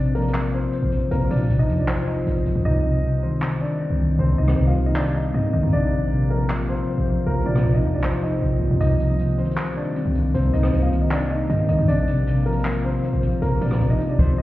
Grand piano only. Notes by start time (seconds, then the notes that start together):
Already playing: D4 D5
0.15 A#3 A#4
0.54 C4 C5
1.11 A#3 A#4
1.31 D4 D5
1.59 D#4 D#5
1.79 D4 D5
1.88 C4 C5
2.07 D#4 D#5
2.65 D#4 D#5
3.23 C4 C5
3.61 D4 D5
4.19 C4 C5
4.38 D#4 D#5
4.67 F4 F5
4.86 D#4 D#5
4.96 D4 D5
5.15 D#4 D#5
5.34 D#4 D#5
5.53 D#4 D#5
5.73 D4 D5
6.30 A#3 A#4
6.69 C4 C5
7.27 A#3 A#4
7.46 D4 D5
7.75 D#4 D#5
7.94 D4 D5
8.04 C4 C5
8.23 D#4 D#5
8.81 D#4 D#5
9.38 C4 C5
9.77 D4 D5
10.34 C4 C5
10.53 D#4 D#5
10.82 F4 F5
11.02 D#4 D#5
11.12 D4 D5
11.30 D#4 D#5
11.50 D#4 D#5
11.69 D#4 D#5
11.88 D4 D5
12.46 A#3 A#4
12.85 C4 C5
13.42 A#3 A#4
13.61 D4 D5
13.90 D#4 D#5
14.09 D4 D5
14.19 C4 C5
14.38 D#5